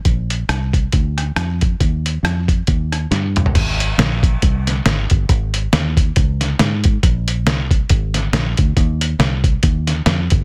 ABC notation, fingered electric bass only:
X:1
M:4/4
L:1/8
Q:"Swing" 1/4=138
K:Ab
V:1 name="Fingered electric bass" clef=bass
B,,,2 C,,2 =D,,2 F,,2 | E,,2 F,,2 E,,2 G,,2 | A,,,2 B,,,2 C,,2 A,,, G,,, | A,,,2 E,,2 D,,2 A,,2 |
B,,,2 C,,2 A,,,2 B,,, =D,, | E,,2 C,,2 E,,2 F,, G,,, |]